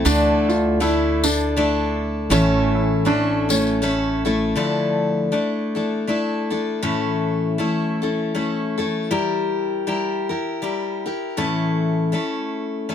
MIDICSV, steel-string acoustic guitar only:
0, 0, Header, 1, 2, 480
1, 0, Start_track
1, 0, Tempo, 754717
1, 31, Time_signature, 3, 2, 24, 8
1, 8235, End_track
2, 0, Start_track
2, 0, Title_t, "Steel-string acoustic guitar"
2, 0, Program_c, 0, 25
2, 31, Note_on_c, 0, 57, 93
2, 34, Note_on_c, 0, 50, 88
2, 36, Note_on_c, 0, 62, 85
2, 38, Note_on_c, 0, 64, 85
2, 40, Note_on_c, 0, 69, 92
2, 504, Note_off_c, 0, 62, 0
2, 508, Note_off_c, 0, 57, 0
2, 510, Note_on_c, 0, 57, 67
2, 511, Note_on_c, 0, 62, 70
2, 512, Note_off_c, 0, 50, 0
2, 517, Note_off_c, 0, 69, 0
2, 518, Note_off_c, 0, 64, 0
2, 519, Note_on_c, 0, 69, 66
2, 521, Note_on_c, 0, 64, 66
2, 783, Note_off_c, 0, 69, 0
2, 785, Note_off_c, 0, 57, 0
2, 785, Note_off_c, 0, 62, 0
2, 790, Note_off_c, 0, 64, 0
2, 791, Note_on_c, 0, 69, 58
2, 798, Note_on_c, 0, 64, 47
2, 804, Note_on_c, 0, 62, 40
2, 992, Note_off_c, 0, 62, 0
2, 992, Note_off_c, 0, 69, 0
2, 994, Note_off_c, 0, 64, 0
2, 995, Note_on_c, 0, 57, 63
2, 1000, Note_on_c, 0, 62, 74
2, 1001, Note_on_c, 0, 64, 72
2, 1001, Note_on_c, 0, 69, 80
2, 1464, Note_on_c, 0, 45, 84
2, 1467, Note_on_c, 0, 52, 83
2, 1468, Note_off_c, 0, 62, 0
2, 1469, Note_off_c, 0, 57, 0
2, 1470, Note_off_c, 0, 69, 0
2, 1470, Note_on_c, 0, 61, 91
2, 1471, Note_off_c, 0, 64, 0
2, 1471, Note_on_c, 0, 57, 98
2, 1473, Note_on_c, 0, 64, 84
2, 1473, Note_on_c, 0, 69, 97
2, 1932, Note_off_c, 0, 57, 0
2, 1938, Note_off_c, 0, 61, 0
2, 1940, Note_on_c, 0, 57, 63
2, 1941, Note_off_c, 0, 64, 0
2, 1945, Note_off_c, 0, 45, 0
2, 1946, Note_off_c, 0, 69, 0
2, 1946, Note_on_c, 0, 61, 67
2, 1947, Note_off_c, 0, 52, 0
2, 1948, Note_on_c, 0, 64, 67
2, 1953, Note_on_c, 0, 69, 66
2, 2211, Note_off_c, 0, 69, 0
2, 2215, Note_off_c, 0, 64, 0
2, 2217, Note_off_c, 0, 61, 0
2, 2218, Note_off_c, 0, 57, 0
2, 2218, Note_on_c, 0, 69, 49
2, 2223, Note_on_c, 0, 64, 46
2, 2225, Note_on_c, 0, 61, 42
2, 2232, Note_on_c, 0, 57, 42
2, 2420, Note_off_c, 0, 57, 0
2, 2425, Note_off_c, 0, 69, 0
2, 2427, Note_off_c, 0, 61, 0
2, 2428, Note_off_c, 0, 64, 0
2, 2428, Note_on_c, 0, 57, 67
2, 2434, Note_on_c, 0, 61, 69
2, 2438, Note_on_c, 0, 64, 69
2, 2440, Note_on_c, 0, 69, 67
2, 2694, Note_off_c, 0, 69, 0
2, 2699, Note_off_c, 0, 64, 0
2, 2702, Note_off_c, 0, 61, 0
2, 2702, Note_on_c, 0, 69, 53
2, 2703, Note_off_c, 0, 57, 0
2, 2707, Note_on_c, 0, 64, 52
2, 2709, Note_on_c, 0, 61, 44
2, 2713, Note_on_c, 0, 57, 48
2, 2894, Note_off_c, 0, 57, 0
2, 2897, Note_on_c, 0, 50, 60
2, 2899, Note_off_c, 0, 64, 0
2, 2900, Note_off_c, 0, 69, 0
2, 2901, Note_on_c, 0, 57, 62
2, 2902, Note_on_c, 0, 53, 59
2, 2903, Note_off_c, 0, 61, 0
2, 2906, Note_on_c, 0, 62, 56
2, 2906, Note_on_c, 0, 64, 65
2, 2908, Note_on_c, 0, 69, 69
2, 3377, Note_off_c, 0, 62, 0
2, 3379, Note_off_c, 0, 57, 0
2, 3382, Note_off_c, 0, 50, 0
2, 3382, Note_on_c, 0, 57, 47
2, 3385, Note_off_c, 0, 53, 0
2, 3385, Note_on_c, 0, 62, 46
2, 3387, Note_off_c, 0, 64, 0
2, 3390, Note_on_c, 0, 64, 46
2, 3392, Note_off_c, 0, 69, 0
2, 3395, Note_on_c, 0, 69, 45
2, 3649, Note_off_c, 0, 69, 0
2, 3655, Note_off_c, 0, 64, 0
2, 3656, Note_on_c, 0, 69, 37
2, 3657, Note_off_c, 0, 62, 0
2, 3660, Note_off_c, 0, 57, 0
2, 3663, Note_on_c, 0, 64, 35
2, 3665, Note_on_c, 0, 62, 34
2, 3668, Note_on_c, 0, 57, 32
2, 3856, Note_off_c, 0, 57, 0
2, 3860, Note_off_c, 0, 62, 0
2, 3864, Note_on_c, 0, 57, 44
2, 3865, Note_off_c, 0, 69, 0
2, 3866, Note_off_c, 0, 64, 0
2, 3868, Note_on_c, 0, 62, 46
2, 3873, Note_on_c, 0, 64, 54
2, 3873, Note_on_c, 0, 69, 52
2, 4129, Note_off_c, 0, 69, 0
2, 4131, Note_off_c, 0, 64, 0
2, 4134, Note_off_c, 0, 62, 0
2, 4137, Note_on_c, 0, 69, 39
2, 4138, Note_off_c, 0, 57, 0
2, 4139, Note_on_c, 0, 64, 40
2, 4142, Note_on_c, 0, 62, 37
2, 4146, Note_on_c, 0, 57, 31
2, 4335, Note_off_c, 0, 57, 0
2, 4337, Note_off_c, 0, 64, 0
2, 4338, Note_off_c, 0, 62, 0
2, 4338, Note_off_c, 0, 69, 0
2, 4341, Note_on_c, 0, 45, 65
2, 4341, Note_on_c, 0, 52, 55
2, 4341, Note_on_c, 0, 61, 67
2, 4342, Note_on_c, 0, 57, 65
2, 4345, Note_on_c, 0, 64, 58
2, 4346, Note_on_c, 0, 69, 72
2, 4815, Note_off_c, 0, 57, 0
2, 4822, Note_off_c, 0, 61, 0
2, 4822, Note_on_c, 0, 57, 46
2, 4825, Note_off_c, 0, 45, 0
2, 4828, Note_off_c, 0, 69, 0
2, 4830, Note_off_c, 0, 64, 0
2, 4830, Note_on_c, 0, 61, 46
2, 4832, Note_on_c, 0, 64, 46
2, 4834, Note_on_c, 0, 69, 47
2, 5091, Note_off_c, 0, 69, 0
2, 5098, Note_off_c, 0, 64, 0
2, 5099, Note_on_c, 0, 69, 37
2, 5100, Note_off_c, 0, 61, 0
2, 5101, Note_off_c, 0, 57, 0
2, 5105, Note_on_c, 0, 64, 39
2, 5108, Note_on_c, 0, 61, 35
2, 5112, Note_on_c, 0, 57, 31
2, 5300, Note_off_c, 0, 57, 0
2, 5303, Note_off_c, 0, 61, 0
2, 5307, Note_off_c, 0, 69, 0
2, 5308, Note_off_c, 0, 64, 0
2, 5308, Note_on_c, 0, 57, 51
2, 5310, Note_on_c, 0, 61, 51
2, 5316, Note_on_c, 0, 64, 53
2, 5317, Note_on_c, 0, 69, 46
2, 5574, Note_off_c, 0, 69, 0
2, 5581, Note_off_c, 0, 64, 0
2, 5581, Note_on_c, 0, 69, 44
2, 5582, Note_off_c, 0, 61, 0
2, 5584, Note_off_c, 0, 57, 0
2, 5589, Note_on_c, 0, 64, 43
2, 5590, Note_on_c, 0, 61, 35
2, 5595, Note_on_c, 0, 57, 31
2, 5785, Note_off_c, 0, 64, 0
2, 5788, Note_off_c, 0, 69, 0
2, 5789, Note_off_c, 0, 57, 0
2, 5790, Note_off_c, 0, 61, 0
2, 5792, Note_on_c, 0, 55, 63
2, 5793, Note_on_c, 0, 64, 59
2, 5794, Note_on_c, 0, 67, 73
2, 5799, Note_on_c, 0, 70, 75
2, 5818, Note_off_c, 0, 52, 0
2, 6269, Note_off_c, 0, 55, 0
2, 6273, Note_off_c, 0, 67, 0
2, 6275, Note_off_c, 0, 70, 0
2, 6276, Note_off_c, 0, 64, 0
2, 6276, Note_on_c, 0, 55, 50
2, 6279, Note_on_c, 0, 64, 46
2, 6283, Note_on_c, 0, 67, 51
2, 6287, Note_on_c, 0, 70, 51
2, 6538, Note_off_c, 0, 70, 0
2, 6545, Note_off_c, 0, 67, 0
2, 6546, Note_off_c, 0, 64, 0
2, 6546, Note_on_c, 0, 70, 42
2, 6549, Note_off_c, 0, 55, 0
2, 6553, Note_on_c, 0, 67, 34
2, 6554, Note_on_c, 0, 64, 34
2, 6749, Note_off_c, 0, 64, 0
2, 6751, Note_off_c, 0, 70, 0
2, 6753, Note_on_c, 0, 55, 51
2, 6755, Note_off_c, 0, 67, 0
2, 6757, Note_on_c, 0, 64, 47
2, 6763, Note_on_c, 0, 67, 49
2, 6766, Note_on_c, 0, 70, 58
2, 7024, Note_off_c, 0, 70, 0
2, 7027, Note_off_c, 0, 67, 0
2, 7028, Note_off_c, 0, 55, 0
2, 7030, Note_off_c, 0, 64, 0
2, 7032, Note_on_c, 0, 70, 43
2, 7035, Note_on_c, 0, 67, 38
2, 7041, Note_on_c, 0, 64, 37
2, 7231, Note_off_c, 0, 64, 0
2, 7231, Note_on_c, 0, 45, 57
2, 7233, Note_on_c, 0, 57, 62
2, 7234, Note_on_c, 0, 52, 64
2, 7234, Note_on_c, 0, 61, 67
2, 7235, Note_off_c, 0, 70, 0
2, 7236, Note_off_c, 0, 67, 0
2, 7237, Note_on_c, 0, 69, 72
2, 7239, Note_on_c, 0, 64, 70
2, 7701, Note_off_c, 0, 57, 0
2, 7706, Note_off_c, 0, 61, 0
2, 7708, Note_on_c, 0, 57, 43
2, 7711, Note_off_c, 0, 64, 0
2, 7712, Note_off_c, 0, 45, 0
2, 7713, Note_on_c, 0, 61, 53
2, 7714, Note_off_c, 0, 52, 0
2, 7716, Note_off_c, 0, 69, 0
2, 7718, Note_on_c, 0, 64, 45
2, 7723, Note_on_c, 0, 69, 47
2, 8189, Note_off_c, 0, 57, 0
2, 8190, Note_off_c, 0, 61, 0
2, 8195, Note_off_c, 0, 64, 0
2, 8197, Note_off_c, 0, 69, 0
2, 8197, Note_on_c, 0, 57, 41
2, 8198, Note_on_c, 0, 61, 48
2, 8203, Note_on_c, 0, 64, 45
2, 8205, Note_on_c, 0, 69, 54
2, 8235, Note_off_c, 0, 57, 0
2, 8235, Note_off_c, 0, 61, 0
2, 8235, Note_off_c, 0, 64, 0
2, 8235, Note_off_c, 0, 69, 0
2, 8235, End_track
0, 0, End_of_file